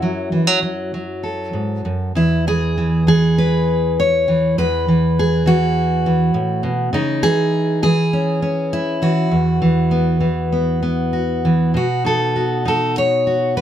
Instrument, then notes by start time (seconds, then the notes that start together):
steel-string acoustic guitar
Already playing: F#2 F#3 E4
0.02 F#3
0.32 E3
0.47 F#3
0.62 F#3
0.94 F#3
1.23 A4
1.53 G#2
1.85 F#2
2.15 E2 E4
2.47 E3 G#4
2.78 E3
3.07 E3 G#4
3.38 B4
4.00 C#5
4.28 E3
4.58 E2 B4
4.88 E3
5.19 G#4
5.46 E3 F#4
6.06 E3
6.34 A2
6.63 B2
6.93 C#3 D#4
7.23 E3 G#4
7.83 E3 G#4
8.13 C#4
8.42 C#4
8.73 E4
9.02 E3 F#4
9.31 E2
9.62 E3
9.91 B3
10.20 E3
10.52 B3
10.83 B3
11.13 F#4
11.45 E3
11.74 B2 F#4
12.05 D#4 A4
12.36 F#4
12.65 D#4 A4
12.98 C#5
13.27 F#4
13.57 B4